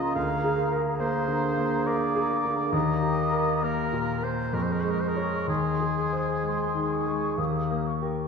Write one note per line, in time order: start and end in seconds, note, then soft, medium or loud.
0.00 0.11 C#2 medium
0.00 0.19 C#3 soft
0.00 0.19 A#3 soft
0.00 2.70 A#3 soft
0.00 0.17 F4 soft
0.00 0.18 F4 soft
0.00 0.18 A#4 soft
0.00 0.15 D#5 medium
0.00 2.70 A#5 soft
0.15 2.70 D2 medium
0.15 2.74 G#4 medium
0.15 0.71 F5 medium
0.44 0.89 G#4 soft
0.71 1.17 A#4 soft
0.99 1.45 A#3 soft
0.99 1.87 C5 medium
1.28 1.74 D3 soft
1.57 2.04 A#3 soft
1.86 2.33 A#4 soft
1.86 2.73 D5 medium
2.15 2.62 G#4 soft
2.45 2.74 D3 soft
2.72 4.49 D#2 medium
2.72 4.21 A#3 soft
2.72 4.21 G4 medium
2.72 3.65 D#5 medium
2.72 4.28 A#5 soft
3.03 3.50 G4 soft
3.31 3.80 A#4 soft
3.62 4.11 A#3 soft
3.62 4.25 A#4 medium
3.93 4.42 A#2 soft
4.22 4.54 A#3 soft
4.22 4.56 C5 medium
4.53 5.45 F2 medium
4.53 7.39 G#3 medium
4.53 7.40 G#4 soft
4.53 4.64 A#4 soft
4.53 5.47 C#6 soft
4.63 4.74 C5 soft
4.72 4.82 A#4 soft
4.80 5.35 G#3 soft
4.80 4.92 C5 soft
4.90 5.02 A#4 soft
5.00 5.10 C5 soft
5.08 5.48 A#4 medium
5.16 5.45 G#4 soft
5.16 5.45 C#5 soft
5.48 7.33 D#2 soft
5.48 7.34 G#4 medium
5.48 6.35 C6 soft
5.80 6.31 G#4 soft
6.13 6.63 C5 soft
6.44 6.94 G#3 soft
6.44 6.88 C6 soft
6.75 7.25 D#3 soft
6.91 7.38 C#6 soft
7.07 7.38 G#3 soft
7.37 8.28 D#2 soft
7.37 7.98 A#3 soft
7.37 7.98 G4 soft
7.37 7.86 D#6 soft
7.71 8.21 A#3 soft
7.86 8.28 C#6 soft
8.02 8.28 G4 soft
8.02 8.28 A#4 soft